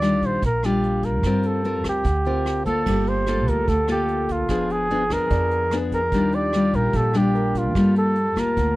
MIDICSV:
0, 0, Header, 1, 7, 480
1, 0, Start_track
1, 0, Key_signature, -2, "minor"
1, 0, Tempo, 407056
1, 1462, Time_signature, 4, 2, 24, 8
1, 10331, End_track
2, 0, Start_track
2, 0, Title_t, "Grand piano"
2, 0, Program_c, 0, 0
2, 1653, Control_c, 0, 64, 127
2, 2673, Note_on_c, 0, 72, 42
2, 3400, Control_c, 0, 64, 0
2, 3400, Note_on_c, 0, 67, 49
2, 3421, Note_off_c, 0, 72, 0
2, 3638, Control_c, 0, 64, 127
2, 4145, Note_off_c, 0, 67, 0
2, 5320, Control_c, 0, 64, 0
2, 5505, Control_c, 0, 64, 127
2, 6259, Note_on_c, 0, 74, 51
2, 7015, Note_off_c, 0, 74, 0
2, 7242, Control_c, 0, 64, 0
2, 7438, Control_c, 0, 64, 127
2, 8662, Note_on_c, 0, 70, 51
2, 9160, Control_c, 0, 64, 0
2, 9336, Note_off_c, 0, 70, 0
2, 10331, End_track
3, 0, Start_track
3, 0, Title_t, "Flugelhorn"
3, 0, Program_c, 1, 56
3, 0, Note_on_c, 1, 74, 99
3, 305, Note_on_c, 1, 72, 92
3, 322, Note_off_c, 1, 74, 0
3, 523, Note_off_c, 1, 72, 0
3, 540, Note_on_c, 1, 70, 89
3, 769, Note_on_c, 1, 67, 78
3, 787, Note_off_c, 1, 70, 0
3, 1236, Note_on_c, 1, 70, 76
3, 1254, Note_off_c, 1, 67, 0
3, 1727, Note_on_c, 1, 69, 81
3, 1745, Note_off_c, 1, 70, 0
3, 2195, Note_off_c, 1, 69, 0
3, 2225, Note_on_c, 1, 67, 81
3, 3117, Note_off_c, 1, 67, 0
3, 3138, Note_on_c, 1, 69, 85
3, 3636, Note_on_c, 1, 72, 86
3, 3654, Note_off_c, 1, 69, 0
3, 4123, Note_on_c, 1, 70, 86
3, 4140, Note_off_c, 1, 72, 0
3, 4348, Note_on_c, 1, 69, 95
3, 4365, Note_off_c, 1, 70, 0
3, 4586, Note_off_c, 1, 69, 0
3, 4617, Note_on_c, 1, 67, 79
3, 5093, Note_on_c, 1, 65, 81
3, 5110, Note_off_c, 1, 67, 0
3, 5564, Note_on_c, 1, 68, 85
3, 5582, Note_off_c, 1, 65, 0
3, 6046, Note_on_c, 1, 70, 101
3, 6064, Note_off_c, 1, 68, 0
3, 6801, Note_off_c, 1, 70, 0
3, 7002, Note_on_c, 1, 70, 89
3, 7489, Note_on_c, 1, 74, 98
3, 7507, Note_off_c, 1, 70, 0
3, 7963, Note_on_c, 1, 70, 95
3, 7980, Note_off_c, 1, 74, 0
3, 8207, Note_on_c, 1, 69, 99
3, 8225, Note_off_c, 1, 70, 0
3, 8458, Note_on_c, 1, 67, 85
3, 8476, Note_off_c, 1, 69, 0
3, 8938, Note_on_c, 1, 65, 81
3, 8955, Note_off_c, 1, 67, 0
3, 9395, Note_off_c, 1, 65, 0
3, 9402, Note_on_c, 1, 69, 94
3, 9897, Note_on_c, 1, 70, 93
3, 9914, Note_off_c, 1, 69, 0
3, 10331, Note_off_c, 1, 70, 0
3, 10331, End_track
4, 0, Start_track
4, 0, Title_t, "Nylon-string guitar"
4, 0, Program_c, 2, 24
4, 0, Note_on_c, 2, 51, 52
4, 20, Note_on_c, 2, 55, 58
4, 25, Note_on_c, 2, 62, 61
4, 29, Note_on_c, 2, 65, 62
4, 475, Note_off_c, 2, 51, 0
4, 499, Note_off_c, 2, 55, 0
4, 500, Note_off_c, 2, 62, 0
4, 502, Note_off_c, 2, 65, 0
4, 504, Note_on_c, 2, 46, 51
4, 763, Note_on_c, 2, 55, 65
4, 769, Note_on_c, 2, 62, 62
4, 775, Note_on_c, 2, 65, 70
4, 1435, Note_off_c, 2, 55, 0
4, 1437, Note_off_c, 2, 62, 0
4, 1439, Note_off_c, 2, 46, 0
4, 1440, Note_off_c, 2, 65, 0
4, 1486, Note_on_c, 2, 55, 54
4, 1486, Note_on_c, 2, 60, 59
4, 1490, Note_on_c, 2, 65, 55
4, 1495, Note_on_c, 2, 70, 51
4, 1916, Note_off_c, 2, 60, 0
4, 1916, Note_off_c, 2, 65, 0
4, 1917, Note_off_c, 2, 70, 0
4, 1944, Note_on_c, 2, 60, 49
4, 1951, Note_on_c, 2, 70, 67
4, 1952, Note_on_c, 2, 65, 53
4, 2403, Note_on_c, 2, 50, 52
4, 2411, Note_off_c, 2, 55, 0
4, 2421, Note_off_c, 2, 60, 0
4, 2423, Note_off_c, 2, 65, 0
4, 2424, Note_off_c, 2, 70, 0
4, 2670, Note_on_c, 2, 60, 58
4, 2679, Note_on_c, 2, 65, 57
4, 2679, Note_on_c, 2, 70, 58
4, 3109, Note_off_c, 2, 60, 0
4, 3111, Note_off_c, 2, 65, 0
4, 3113, Note_off_c, 2, 70, 0
4, 3143, Note_on_c, 2, 58, 45
4, 3149, Note_on_c, 2, 65, 53
4, 3155, Note_on_c, 2, 69, 48
4, 3349, Note_off_c, 2, 50, 0
4, 3380, Note_on_c, 2, 55, 46
4, 3826, Note_off_c, 2, 58, 0
4, 3826, Note_off_c, 2, 65, 0
4, 3831, Note_off_c, 2, 69, 0
4, 3861, Note_on_c, 2, 58, 57
4, 3871, Note_on_c, 2, 65, 53
4, 3878, Note_on_c, 2, 69, 59
4, 4318, Note_off_c, 2, 55, 0
4, 4339, Note_off_c, 2, 58, 0
4, 4345, Note_off_c, 2, 65, 0
4, 4348, Note_off_c, 2, 69, 0
4, 4349, Note_on_c, 2, 50, 50
4, 4580, Note_on_c, 2, 58, 51
4, 4585, Note_on_c, 2, 65, 55
4, 4596, Note_on_c, 2, 69, 66
4, 5264, Note_off_c, 2, 58, 0
4, 5267, Note_off_c, 2, 65, 0
4, 5272, Note_off_c, 2, 69, 0
4, 5283, Note_off_c, 2, 50, 0
4, 5300, Note_on_c, 2, 53, 46
4, 5304, Note_on_c, 2, 59, 52
4, 5307, Note_on_c, 2, 62, 51
4, 5309, Note_on_c, 2, 68, 50
4, 5745, Note_off_c, 2, 59, 0
4, 5747, Note_off_c, 2, 68, 0
4, 5748, Note_off_c, 2, 62, 0
4, 5790, Note_on_c, 2, 62, 56
4, 5791, Note_on_c, 2, 59, 54
4, 5792, Note_on_c, 2, 68, 63
4, 5927, Note_off_c, 2, 68, 0
4, 5928, Note_off_c, 2, 62, 0
4, 5930, Note_off_c, 2, 59, 0
4, 6031, Note_on_c, 2, 59, 57
4, 6035, Note_on_c, 2, 62, 59
4, 6044, Note_on_c, 2, 68, 58
4, 6239, Note_off_c, 2, 53, 0
4, 6265, Note_on_c, 2, 53, 48
4, 6711, Note_off_c, 2, 62, 0
4, 6712, Note_off_c, 2, 59, 0
4, 6712, Note_off_c, 2, 68, 0
4, 6749, Note_on_c, 2, 59, 59
4, 6760, Note_on_c, 2, 62, 64
4, 6766, Note_on_c, 2, 68, 58
4, 7070, Note_off_c, 2, 59, 0
4, 7075, Note_off_c, 2, 62, 0
4, 7077, Note_off_c, 2, 68, 0
4, 7201, Note_off_c, 2, 53, 0
4, 7237, Note_on_c, 2, 55, 49
4, 7243, Note_on_c, 2, 51, 50
4, 7249, Note_on_c, 2, 62, 58
4, 7257, Note_on_c, 2, 65, 59
4, 7673, Note_off_c, 2, 55, 0
4, 7678, Note_off_c, 2, 62, 0
4, 7680, Note_off_c, 2, 65, 0
4, 7729, Note_on_c, 2, 55, 55
4, 7736, Note_on_c, 2, 62, 49
4, 7747, Note_on_c, 2, 65, 64
4, 8172, Note_off_c, 2, 51, 0
4, 8191, Note_on_c, 2, 46, 49
4, 8399, Note_off_c, 2, 55, 0
4, 8402, Note_off_c, 2, 62, 0
4, 8408, Note_off_c, 2, 65, 0
4, 8427, Note_on_c, 2, 55, 59
4, 8437, Note_on_c, 2, 62, 66
4, 8440, Note_on_c, 2, 65, 62
4, 9107, Note_off_c, 2, 55, 0
4, 9113, Note_off_c, 2, 62, 0
4, 9113, Note_off_c, 2, 65, 0
4, 9124, Note_off_c, 2, 46, 0
4, 9148, Note_on_c, 2, 55, 51
4, 9157, Note_on_c, 2, 65, 46
4, 9159, Note_on_c, 2, 58, 49
4, 9162, Note_on_c, 2, 69, 57
4, 9626, Note_off_c, 2, 58, 0
4, 9628, Note_off_c, 2, 65, 0
4, 9628, Note_off_c, 2, 69, 0
4, 9858, Note_on_c, 2, 58, 54
4, 9864, Note_on_c, 2, 65, 50
4, 10083, Note_off_c, 2, 55, 0
4, 10102, Note_on_c, 2, 50, 51
4, 10302, Note_off_c, 2, 58, 0
4, 10304, Note_off_c, 2, 65, 0
4, 10331, Note_off_c, 2, 50, 0
4, 10331, End_track
5, 0, Start_track
5, 0, Title_t, "Brass ensemble"
5, 0, Program_c, 3, 61
5, 3382, Note_on_c, 3, 58, 61
5, 3387, Note_on_c, 3, 69, 82
5, 3391, Note_on_c, 3, 53, 71
5, 5285, Note_off_c, 3, 58, 0
5, 5287, Note_off_c, 3, 69, 0
5, 5289, Note_off_c, 3, 53, 0
5, 5298, Note_on_c, 3, 59, 61
5, 5298, Note_on_c, 3, 68, 73
5, 5305, Note_on_c, 3, 50, 71
5, 7203, Note_off_c, 3, 59, 0
5, 7203, Note_off_c, 3, 68, 0
5, 7206, Note_off_c, 3, 50, 0
5, 7217, Note_on_c, 3, 62, 60
5, 7220, Note_on_c, 3, 67, 72
5, 7222, Note_on_c, 3, 53, 63
5, 9122, Note_off_c, 3, 62, 0
5, 9123, Note_off_c, 3, 67, 0
5, 9143, Note_on_c, 3, 58, 68
5, 9147, Note_on_c, 3, 81, 72
5, 10331, Note_off_c, 3, 53, 0
5, 10331, Note_off_c, 3, 58, 0
5, 10331, Note_off_c, 3, 81, 0
5, 10331, End_track
6, 0, Start_track
6, 0, Title_t, "Upright bass"
6, 0, Program_c, 4, 32
6, 0, Note_on_c, 4, 39, 87
6, 262, Note_off_c, 4, 39, 0
6, 262, Note_on_c, 4, 34, 74
6, 485, Note_off_c, 4, 34, 0
6, 505, Note_on_c, 4, 34, 92
6, 1459, Note_off_c, 4, 34, 0
6, 1459, Note_on_c, 4, 43, 85
6, 2173, Note_off_c, 4, 43, 0
6, 2173, Note_on_c, 4, 38, 71
6, 2401, Note_off_c, 4, 38, 0
6, 2411, Note_on_c, 4, 38, 90
6, 3330, Note_off_c, 4, 38, 0
6, 3371, Note_on_c, 4, 31, 87
6, 4094, Note_off_c, 4, 31, 0
6, 4094, Note_on_c, 4, 38, 62
6, 4322, Note_off_c, 4, 38, 0
6, 4340, Note_on_c, 4, 38, 87
6, 5297, Note_off_c, 4, 38, 0
6, 5297, Note_on_c, 4, 29, 80
6, 6014, Note_on_c, 4, 41, 70
6, 6032, Note_off_c, 4, 29, 0
6, 6242, Note_off_c, 4, 41, 0
6, 6259, Note_on_c, 4, 41, 94
6, 7219, Note_off_c, 4, 41, 0
6, 7219, Note_on_c, 4, 39, 87
6, 7943, Note_on_c, 4, 34, 77
6, 7961, Note_off_c, 4, 39, 0
6, 8167, Note_off_c, 4, 34, 0
6, 8173, Note_on_c, 4, 34, 91
6, 9139, Note_off_c, 4, 34, 0
6, 9139, Note_on_c, 4, 43, 97
6, 9863, Note_off_c, 4, 43, 0
6, 9863, Note_on_c, 4, 38, 82
6, 10087, Note_off_c, 4, 38, 0
6, 10112, Note_on_c, 4, 38, 87
6, 10331, Note_off_c, 4, 38, 0
6, 10331, End_track
7, 0, Start_track
7, 0, Title_t, "Drums"
7, 26, Note_on_c, 9, 37, 60
7, 26, Note_on_c, 9, 42, 40
7, 144, Note_off_c, 9, 37, 0
7, 144, Note_off_c, 9, 42, 0
7, 259, Note_on_c, 9, 36, 22
7, 265, Note_on_c, 9, 42, 38
7, 377, Note_off_c, 9, 36, 0
7, 383, Note_off_c, 9, 42, 0
7, 500, Note_on_c, 9, 36, 58
7, 502, Note_on_c, 9, 42, 57
7, 618, Note_off_c, 9, 36, 0
7, 620, Note_off_c, 9, 42, 0
7, 743, Note_on_c, 9, 37, 53
7, 743, Note_on_c, 9, 42, 36
7, 861, Note_off_c, 9, 37, 0
7, 861, Note_off_c, 9, 42, 0
7, 983, Note_on_c, 9, 42, 40
7, 1101, Note_off_c, 9, 42, 0
7, 1214, Note_on_c, 9, 42, 43
7, 1215, Note_on_c, 9, 36, 25
7, 1332, Note_off_c, 9, 42, 0
7, 1333, Note_off_c, 9, 36, 0
7, 1453, Note_on_c, 9, 37, 49
7, 1453, Note_on_c, 9, 42, 52
7, 1455, Note_on_c, 9, 36, 53
7, 1571, Note_off_c, 9, 37, 0
7, 1571, Note_off_c, 9, 42, 0
7, 1573, Note_off_c, 9, 36, 0
7, 1688, Note_on_c, 9, 42, 42
7, 1806, Note_off_c, 9, 42, 0
7, 1937, Note_on_c, 9, 42, 41
7, 2055, Note_off_c, 9, 42, 0
7, 2172, Note_on_c, 9, 37, 60
7, 2172, Note_on_c, 9, 42, 43
7, 2174, Note_on_c, 9, 36, 23
7, 2290, Note_off_c, 9, 37, 0
7, 2290, Note_off_c, 9, 42, 0
7, 2292, Note_off_c, 9, 36, 0
7, 2414, Note_on_c, 9, 42, 57
7, 2415, Note_on_c, 9, 36, 56
7, 2532, Note_off_c, 9, 36, 0
7, 2532, Note_off_c, 9, 42, 0
7, 2652, Note_on_c, 9, 42, 35
7, 2770, Note_off_c, 9, 42, 0
7, 2900, Note_on_c, 9, 37, 57
7, 2900, Note_on_c, 9, 42, 40
7, 3018, Note_off_c, 9, 37, 0
7, 3018, Note_off_c, 9, 42, 0
7, 3133, Note_on_c, 9, 42, 45
7, 3134, Note_on_c, 9, 36, 26
7, 3251, Note_off_c, 9, 42, 0
7, 3252, Note_off_c, 9, 36, 0
7, 3374, Note_on_c, 9, 36, 53
7, 3377, Note_on_c, 9, 49, 57
7, 3492, Note_off_c, 9, 36, 0
7, 3495, Note_off_c, 9, 49, 0
7, 3617, Note_on_c, 9, 42, 40
7, 3735, Note_off_c, 9, 42, 0
7, 3850, Note_on_c, 9, 37, 55
7, 3850, Note_on_c, 9, 42, 39
7, 3968, Note_off_c, 9, 37, 0
7, 3968, Note_off_c, 9, 42, 0
7, 4096, Note_on_c, 9, 36, 23
7, 4101, Note_on_c, 9, 42, 43
7, 4214, Note_off_c, 9, 36, 0
7, 4219, Note_off_c, 9, 42, 0
7, 4337, Note_on_c, 9, 36, 56
7, 4340, Note_on_c, 9, 42, 53
7, 4455, Note_off_c, 9, 36, 0
7, 4458, Note_off_c, 9, 42, 0
7, 4572, Note_on_c, 9, 37, 54
7, 4572, Note_on_c, 9, 42, 41
7, 4690, Note_off_c, 9, 37, 0
7, 4690, Note_off_c, 9, 42, 0
7, 4816, Note_on_c, 9, 42, 44
7, 4934, Note_off_c, 9, 42, 0
7, 5056, Note_on_c, 9, 36, 24
7, 5057, Note_on_c, 9, 42, 48
7, 5174, Note_off_c, 9, 36, 0
7, 5175, Note_off_c, 9, 42, 0
7, 5291, Note_on_c, 9, 37, 52
7, 5291, Note_on_c, 9, 42, 58
7, 5296, Note_on_c, 9, 36, 52
7, 5409, Note_off_c, 9, 37, 0
7, 5409, Note_off_c, 9, 42, 0
7, 5414, Note_off_c, 9, 36, 0
7, 5543, Note_on_c, 9, 42, 43
7, 5661, Note_off_c, 9, 42, 0
7, 5781, Note_on_c, 9, 42, 44
7, 5899, Note_off_c, 9, 42, 0
7, 6016, Note_on_c, 9, 36, 24
7, 6017, Note_on_c, 9, 37, 57
7, 6017, Note_on_c, 9, 42, 41
7, 6134, Note_off_c, 9, 36, 0
7, 6135, Note_off_c, 9, 37, 0
7, 6135, Note_off_c, 9, 42, 0
7, 6255, Note_on_c, 9, 42, 57
7, 6259, Note_on_c, 9, 36, 58
7, 6373, Note_off_c, 9, 42, 0
7, 6377, Note_off_c, 9, 36, 0
7, 6499, Note_on_c, 9, 42, 42
7, 6617, Note_off_c, 9, 42, 0
7, 6735, Note_on_c, 9, 37, 57
7, 6735, Note_on_c, 9, 42, 43
7, 6853, Note_off_c, 9, 37, 0
7, 6853, Note_off_c, 9, 42, 0
7, 6978, Note_on_c, 9, 36, 26
7, 6980, Note_on_c, 9, 42, 42
7, 7096, Note_off_c, 9, 36, 0
7, 7098, Note_off_c, 9, 42, 0
7, 7216, Note_on_c, 9, 42, 50
7, 7217, Note_on_c, 9, 36, 58
7, 7334, Note_off_c, 9, 42, 0
7, 7335, Note_off_c, 9, 36, 0
7, 7459, Note_on_c, 9, 42, 43
7, 7577, Note_off_c, 9, 42, 0
7, 7698, Note_on_c, 9, 37, 55
7, 7698, Note_on_c, 9, 42, 36
7, 7816, Note_off_c, 9, 37, 0
7, 7816, Note_off_c, 9, 42, 0
7, 7939, Note_on_c, 9, 36, 22
7, 7942, Note_on_c, 9, 42, 40
7, 8057, Note_off_c, 9, 36, 0
7, 8059, Note_off_c, 9, 42, 0
7, 8175, Note_on_c, 9, 42, 54
7, 8178, Note_on_c, 9, 36, 58
7, 8293, Note_off_c, 9, 42, 0
7, 8296, Note_off_c, 9, 36, 0
7, 8415, Note_on_c, 9, 37, 51
7, 8415, Note_on_c, 9, 42, 38
7, 8533, Note_off_c, 9, 37, 0
7, 8533, Note_off_c, 9, 42, 0
7, 8667, Note_on_c, 9, 42, 38
7, 8785, Note_off_c, 9, 42, 0
7, 8900, Note_on_c, 9, 36, 25
7, 8902, Note_on_c, 9, 42, 47
7, 9018, Note_off_c, 9, 36, 0
7, 9020, Note_off_c, 9, 42, 0
7, 9142, Note_on_c, 9, 36, 57
7, 9143, Note_on_c, 9, 37, 58
7, 9143, Note_on_c, 9, 42, 53
7, 9259, Note_off_c, 9, 36, 0
7, 9261, Note_off_c, 9, 37, 0
7, 9261, Note_off_c, 9, 42, 0
7, 9383, Note_on_c, 9, 42, 42
7, 9501, Note_off_c, 9, 42, 0
7, 9617, Note_on_c, 9, 42, 41
7, 9735, Note_off_c, 9, 42, 0
7, 9863, Note_on_c, 9, 36, 23
7, 9871, Note_on_c, 9, 37, 53
7, 9871, Note_on_c, 9, 42, 47
7, 9981, Note_off_c, 9, 36, 0
7, 9989, Note_off_c, 9, 37, 0
7, 9989, Note_off_c, 9, 42, 0
7, 10106, Note_on_c, 9, 36, 52
7, 10108, Note_on_c, 9, 42, 63
7, 10224, Note_off_c, 9, 36, 0
7, 10226, Note_off_c, 9, 42, 0
7, 10331, End_track
0, 0, End_of_file